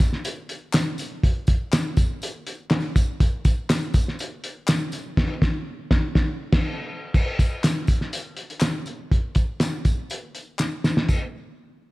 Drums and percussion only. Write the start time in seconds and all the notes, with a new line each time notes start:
0.00 kick, snare, closed hi-hat, tambourine
0.13 snare
0.25 closed hi-hat, tambourine
0.49 closed hi-hat, tambourine
0.73 snare, clap, closed hi-hat, tambourine
0.98 closed hi-hat, tambourine
1.24 kick, closed hi-hat
1.47 kick, closed hi-hat, tambourine
1.73 snare, clap, closed hi-hat, tambourine
1.97 kick, closed hi-hat, tambourine
2.22 closed hi-hat, tambourine
2.47 closed hi-hat, tambourine
2.71 snare, clap, closed hi-hat, tambourine
2.96 kick, closed hi-hat, tambourine
3.20 kick, closed hi-hat, tambourine
3.45 kick, closed hi-hat, tambourine
3.69 snare, clap, closed hi-hat, tambourine
3.94 kick, closed hi-hat, tambourine
4.08 snare
4.19 closed hi-hat, tambourine
4.44 closed hi-hat, tambourine
4.68 snare, clap, closed hi-hat, tambourine
4.92 closed hi-hat, tambourine
5.17 kick, snare, crash
5.42 kick, snare
5.91 kick, snare
6.15 kick, snare
6.52 kick, snare, crash
7.14 kick, crash, tambourine
7.39 kick, closed hi-hat, tambourine
7.64 snare, clap, closed hi-hat, tambourine
7.87 kick, closed hi-hat, tambourine
8.01 snare
8.13 closed hi-hat, tambourine
8.37 closed hi-hat
8.50 closed hi-hat
8.61 snare, clap, closed hi-hat, tambourine
8.86 closed hi-hat, tambourine
9.12 kick, closed hi-hat, tambourine
9.35 kick, closed hi-hat, tambourine
9.60 snare, clap, closed hi-hat, tambourine
9.85 kick, closed hi-hat, tambourine
10.10 closed hi-hat, tambourine
10.35 closed hi-hat, tambourine
10.59 snare, clap, tambourine
10.84 snare, tambourine
10.97 snare
11.08 kick, crash, tambourine